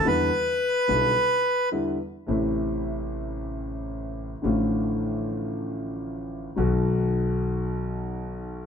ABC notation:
X:1
M:4/4
L:1/8
Q:1/4=112
K:Em
V:1 name="Bandoneon"
B6 z2 | [K:Ddor] z8 | z8 | z8 |]
V:2 name="Grand piano" clef=bass
[E,,D,E,G,B,E] z2 [B,,,B,,D,G,B,E] z2 [E,,D,E,G,B,E] z | [K:Ddor] [A,,,A,,C,E,A,E]8 | [A,,,A,,D,F,A,F]8 | [B,,,B,,^D,^F,B,^F]8 |]
V:3 name="Upright bass" clef=bass
E,, z2 B,,, z4 | [K:Ddor] A,,,8 | A,,,8 | B,,,8 |]